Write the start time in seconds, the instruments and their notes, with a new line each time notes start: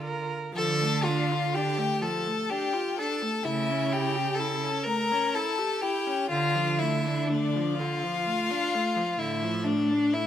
Already playing: cello D3, violin F4
0.04 viola A#4
0.54 cello D3, viola F3, violin A4 A5
0.81 viola A3
1.04 viola D4, violin F4 F5
1.31 viola F4
1.54 viola D4, violin G4 G5
1.78 viola A3
2.01 viola F3, violin A4 A5
2.26 viola A3
2.50 viola D4, violin G4 G5
2.73 viola F4
2.98 viola D4, violin A4 A5
3.22 viola A3
3.43 cello C#3, viola A3, violin E4 E5
3.70 viola C#4
3.92 viola E4, violin G4 G5
4.16 viola G4
4.35 violin A4 A5
4.39 viola E4
4.64 viola C#4
4.84 viola A3, violin A#4 A#5
5.12 viola C#4
5.34 viola E4, violin A4 A5
5.59 viola G4
5.82 viola E4, violin G4 G5
6.07 viola C#4
6.30 cello D3, viola D3, violin F4 F5
6.55 viola F3
6.78 viola A3, violin E4 E5
7.06 viola D4
7.27 viola A3, violin D4 D5
7.55 viola F3
7.77 viola D3, violin F4 F5
8.03 viola F3
8.26 viola A3
8.50 viola D4
8.75 viola A3
8.96 viola F3
9.19 cello A2, viola D3, violin E4 E5
9.43 viola F3
9.64 viola A3, violin D4 D5
9.91 viola D4
10.14 viola A3, violin E4 E5